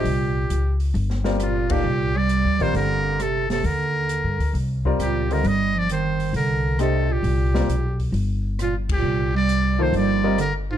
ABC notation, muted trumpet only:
X:1
M:4/4
L:1/8
Q:"Swing" 1/4=134
K:Cdor
V:1 name="Muted trumpet"
G3 z3 F G- | G d2 c B2 A A | B4 z2 G B | e d c2 B2 A G- |
G3 z3 F G- | G d2 c d2 B F |]